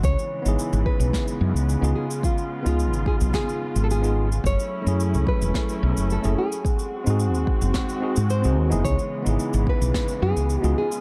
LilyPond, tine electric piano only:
\new Staff \with { instrumentName = "Tine electric piano" } { \time 4/4 \key cis \minor \tempo 4 = 109 r8. <b dis' e' gis'>2~ <b dis' e' gis'>8 <b dis' eis' gis'>8 r16 | r8. <b dis' eis' gis'>2~ <b dis' eis' gis'>8 <b dis' eis' gis'>8 r16 | r8. <a cis' e' gis'>2~ <a cis' e' gis'>8 <a cis' e' gis'>8 r16 | r8. <bis dis' fis' gis'>4.~ <bis dis' fis' gis'>16 <bis dis' fis' gis'>16 r8 <bis dis' fis' gis'>8 <b dis' e' gis'>16~ |
<b dis' e' gis'>16 r8 <b dis' e' gis'>2~ <b dis' e' gis'>8 <b dis' eis' gis'>8 r16 | }